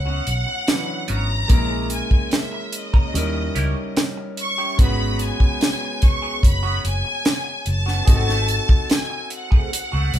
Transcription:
Already playing: fingered electric bass C#2, grand piano F#3 B3 C#4 E4 B4, violin section F#5
0.06 clean electric guitar B3 C#4 F#4
0.26 fingered electric bass B1, muted clean electric guitar stroke, closed hi-hat
0.47 muted clean electric guitar stroke
0.67 grand piano E3 C#4 D4 E4 B4, muted clean electric guitar stroke, snare, closed hi-hat
0.74 grand piano F#3
0.88 muted clean electric guitar stroke
1.08 fingered electric bass G#1, clean electric guitar B3 C#4 F#4, violin section A#5, closed hi-hat
1.29 muted clean electric guitar stroke
1.48 fingered electric bass A#1, grand piano G#3 A#3 C#4 E4 A#4, clean electric guitar A#3 C#4 G#4, kick, closed hi-hat
1.90 violin section G#5, closed hi-hat
2.11 muted fingered electric bass stroke, muted clean electric guitar stroke, kick
2.31 violin section E5, muted clean electric guitar stroke, snare, closed hi-hat
2.53 muted clean electric guitar stroke
2.72 violin section D#5, closed hi-hat
2.93 clean electric guitar A#3 C#4 A#4, kick
3.12 fingered electric bass D#2, grand piano G3 C#4 D#4 E4 A#4, closed hi-hat
3.35 muted clean electric guitar stroke
3.55 fingered electric bass C#2, clean electric guitar C#4 E4 G4, closed hi-hat
3.76 muted clean electric guitar stroke
3.97 muted clean electric guitar stroke, snare, closed hi-hat
4.17 muted clean electric guitar stroke
4.37 closed hi-hat
4.42 violin section C#6
4.58 clean electric guitar C#4 E4 G4
4.77 fingered electric bass G#1, grand piano G#3 B3 C#4 F#4, clean electric guitar B3 C#4, kick, closed hi-hat
4.81 clean electric guitar F#4, grand piano B4, violin section B5
5.19 closed hi-hat
5.24 violin section G#5
5.40 muted fingered electric bass stroke, muted clean electric guitar stroke, kick
5.61 muted clean electric guitar stroke, snare, closed hi-hat
5.81 muted clean electric guitar stroke
6.02 kick, closed hi-hat
6.06 violin section C#6
6.22 clean electric guitar B3 C#4 G#4
6.42 fingered electric bass F#1, violin section B5, muted clean electric guitar stroke, kick, closed hi-hat
6.63 clean electric guitar B3 C#4 F#4
6.84 fingered electric bass F#1, violin section G#5, muted clean electric guitar stroke, closed hi-hat
7.05 muted clean electric guitar stroke
7.25 muted clean electric guitar stroke, snare, closed hi-hat
7.44 muted clean electric guitar stroke
7.66 fingered electric bass F#1, violin section A5, closed hi-hat
7.86 clean electric guitar B3 C#4 F#4, snare
8.05 fingered electric bass G#1, clean electric guitar A3 C4 F#4, grand piano C4 D#4 F#4 G#4, kick, closed hi-hat
8.16 grand piano A4
8.29 snare
8.48 closed hi-hat
8.69 muted clean electric guitar stroke, muted fingered electric bass stroke, kick
8.89 violin section G#5, muted clean electric guitar stroke, snare, closed hi-hat
9.10 muted clean electric guitar stroke
9.30 violin section F#5, closed hi-hat
9.51 clean electric guitar A3 C4 G#4, kick
9.72 muted clean electric guitar stroke, closed hi-hat
9.92 fingered electric bass C#2, clean electric guitar A3 C4 F#4
10.14 fingered electric bass C2, muted clean electric guitar stroke, closed hi-hat

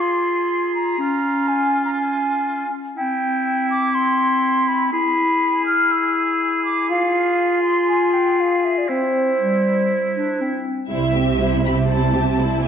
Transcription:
Already playing: clarinet F4, oboe G#4
0.01 flute C6
0.75 flute A#5
0.98 clarinet C#4, oboe F4
1.48 flute G#5
1.85 flute A#5
1.99 flute G#5
2.97 clarinet C4, oboe E4, flute G5
3.71 flute D6
3.95 flute C6
4.68 flute B5
4.92 clarinet E4, oboe G#4, flute B5
5.66 flute F6
5.92 flute E6
6.65 flute D6
6.90 clarinet F4, flute F5
7.64 flute C6
7.88 flute G#5
8.13 flute G5
8.40 flute F5
8.64 flute E5
8.78 flute D5
8.88 clarinet C4, oboe E4, flute C5
9.40 clarinet G3
10.16 clarinet D4
10.41 clarinet C4
10.90 double bass section C2, cello section C3, viola section G3 E4, violin section E4 C5 E5
11.15 viola section C4 G4, violin section G4 E5
11.41 viola section G3 E4, violin section E4 C5
11.65 viola section C4 G4, violin section G4 E5 B5
11.89 viola section G3 E4, violin section E4 C5 A5
12.14 viola section C4 G4, violin section G4 E5
12.38 viola section G3 E4, violin section E4 C5
12.64 violin section G4 E5 G#5

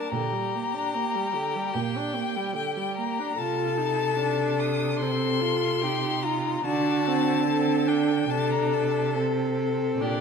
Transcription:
Already playing: viola D4, violin A#4 A5
0.09 cello A#2, violin G4 A#5
0.14 viola D3
0.33 viola G3
0.55 viola A#3
0.75 viola D4
0.96 viola A#3
1.15 viola G3
1.35 viola D3
1.56 viola G3
1.74 cello A#2, viola A#3, violin G5
1.97 viola D4
2.16 viola A#3
2.36 viola G3
2.55 viola D3, violin G5
2.76 viola G3, violin G5
2.97 viola A#3, violin A#5
3.19 viola D4
3.37 cello C3, viola F4, violin A4 A5
3.78 viola D#4
4.19 viola D4
4.60 violin D#6
5.00 viola C4, violin A4 C6
5.41 viola F4
5.82 viola D#4, violin G4
6.23 violin F4 A#5
6.66 cello D3, viola D4, violin F#4 A5
7.08 viola C4
7.47 viola C4, violin A4
7.87 viola D4, violin G5
8.30 cello C3, viola D4, violin A4 A5
8.51 violin A#5
8.73 violin A5
9.15 viola C4, violin A4
9.99 cello A#2, viola D4, violin G4 D5

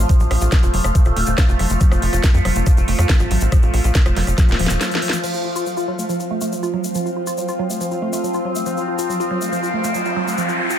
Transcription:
Already playing: synth drone F3 A3, ambient pad F4 C5 F5
0.09 synth arpeggio sound F3, kick, closed hi-hat, shaker
0.20 analog synth bass A#1, synth arpeggio sound F4, shaker
0.31 analog synth bass A#1, synth arpeggio sound F4, cross-stick, open hi-hat
0.41 analog synth bass A#1, synth arpeggio sound F4, closed hi-hat, shaker
0.52 synth arpeggio sound F#3, kick, cross-stick, snare, closed hi-hat, shaker
0.63 analog synth bass F1, synth arpeggio sound F4, closed hi-hat, shaker
0.74 analog synth bass F1, synth arpeggio sound F#3, open hi-hat
0.84 analog synth bass F1, synth arpeggio sound A3, cross-stick, shaker
0.95 synth arpeggio sound F3, kick, closed hi-hat, shaker
1.05 analog synth bass D#1, synth arpeggio sound F4, cross-stick, closed hi-hat, shaker
1.16 analog synth bass D#1, synth arpeggio sound A3, open hi-hat
1.26 analog synth bass D#1, synth arpeggio sound A3, closed hi-hat, shaker
1.38 synth arpeggio sound F#3, kick, cross-stick, snare, closed hi-hat, shaker
1.49 analog synth bass F1, synth arpeggio sound F4, shaker
1.59 analog synth bass F1, synth arpeggio sound F#3, cross-stick, open hi-hat
1.70 analog synth bass F1, synth arpeggio sound A3, closed hi-hat, shaker
1.80 synth arpeggio sound F3, kick, closed hi-hat, shaker
1.91 analog synth bass F1, synth arpeggio sound F4, cross-stick, shaker
2.02 analog synth bass F1, open hi-hat
2.13 analog synth bass F1, synth arpeggio sound F4, cross-stick, closed hi-hat, shaker
2.23 synth arpeggio sound F#3, kick, snare, closed hi-hat, shaker
2.34 analog synth bass F2, synth arpeggio sound F4, closed hi-hat, shaker
2.45 analog synth bass F1, synth arpeggio sound F#3, cross-stick, open hi-hat
2.56 analog synth bass F1, synth arpeggio sound A3, shaker
2.66 synth arpeggio sound F3, kick, cross-stick, closed hi-hat, shaker
2.77 analog synth bass F1, synth arpeggio sound F4, closed hi-hat, shaker
2.88 analog synth bass F1, synth arpeggio sound A3, open hi-hat
2.99 analog synth bass F2, synth arpeggio sound A3, cross-stick, closed hi-hat, shaker
3.09 synth arpeggio sound F#3, kick, snare, closed hi-hat, shaker
3.19 analog synth bass A1, synth arpeggio sound F4, cross-stick, shaker
3.31 analog synth bass A1, synth arpeggio sound F#3, open hi-hat
3.41 analog synth bass A1, synth arpeggio sound A3, closed hi-hat, shaker
3.52 synth arpeggio sound F3, kick, cross-stick, closed hi-hat, shaker
3.62 analog synth bass A#1, synth arpeggio sound F4, closed hi-hat, shaker
3.74 analog synth bass A#1, synth arpeggio sound F4, cross-stick, open hi-hat
3.84 analog synth bass A#1, synth arpeggio sound F4, closed hi-hat, shaker
3.94 synth arpeggio sound F#3, kick, snare, closed hi-hat, shaker
4.05 analog synth bass F1, synth arpeggio sound F4, cross-stick, closed hi-hat, shaker
4.16 analog synth bass F1, synth arpeggio sound F#3, snare, open hi-hat
4.27 analog synth bass F1, synth arpeggio sound A3, cross-stick, closed hi-hat, shaker
4.38 synth arpeggio sound F3, kick, snare, closed hi-hat, shaker
4.49 analog synth bass D#1, synth arpeggio sound F4, snare, closed hi-hat, shaker
4.59 analog synth bass D#1, synth arpeggio sound F3, open hi-hat
4.66 analog synth bass D#1, synth arpeggio sound F3, snare, closed hi-hat, shaker
4.81 synth arpeggio sound F#3, snare, closed hi-hat, shaker
4.91 synth arpeggio sound F3, snare, closed hi-hat, shaker
5.02 synth arpeggio sound F#3, open hi-hat
5.09 synth arpeggio sound F3, snare, closed hi-hat, shaker
5.24 synth arpeggio sound F3, synth drone F3 C4, ambient pad F4, crash, shaker
5.34 synth arpeggio sound F4, shaker
5.45 synth arpeggio sound F4
5.56 synth arpeggio sound F4, shaker
5.66 synth arpeggio sound F#3, shaker
5.71 ambient pad C5
5.77 synth arpeggio sound F4, shaker
5.88 synth arpeggio sound F#3
5.99 synth arpeggio sound A3, shaker
6.09 synth arpeggio sound F3, shaker
6.20 synth arpeggio sound F4, shaker
6.31 synth arpeggio sound A3, ambient pad F5
6.41 synth arpeggio sound A3, shaker
6.52 synth arpeggio sound F#3, shaker
6.63 synth arpeggio sound F4, shaker
6.74 synth arpeggio sound F#3
6.84 synth arpeggio sound A3, shaker
6.95 synth arpeggio sound F3, shaker
7.06 synth arpeggio sound F4, shaker
7.16 synth arpeggio sound F4
7.27 synth arpeggio sound F4, shaker
7.37 synth arpeggio sound F#3, shaker
7.48 synth arpeggio sound F4, shaker
7.59 synth arpeggio sound F#3
7.70 synth arpeggio sound A3, shaker
7.81 synth arpeggio sound F3, shaker
7.91 synth arpeggio sound F4, shaker
8.02 synth arpeggio sound A3
8.13 synth arpeggio sound A3, shaker
8.24 synth arpeggio sound F#3, shaker
8.34 synth arpeggio sound F4, shaker
8.45 synth arpeggio sound F#3
8.55 synth arpeggio sound A3, shaker
8.66 synth arpeggio sound F3, riser, shaker
8.77 synth arpeggio sound F4, shaker
8.88 synth arpeggio sound F4
8.99 synth arpeggio sound F4, shaker
9.09 synth arpeggio sound F#3, shaker
9.20 synth arpeggio sound F4, shaker
9.31 synth arpeggio sound F#3
9.41 synth arpeggio sound A3, shaker
9.52 synth arpeggio sound F3, shaker
9.63 synth arpeggio sound F4, shaker
9.74 synth arpeggio sound A3
9.84 synth arpeggio sound A3, shaker
9.94 synth arpeggio sound F#3, shaker
10.05 synth arpeggio sound F4, shaker
10.17 synth arpeggio sound F#3
10.27 synth arpeggio sound A3, shaker
10.38 synth arpeggio sound F3, shaker
10.49 synth arpeggio sound F4, shaker
10.59 synth arpeggio sound F4
10.70 synth arpeggio sound F4, shaker

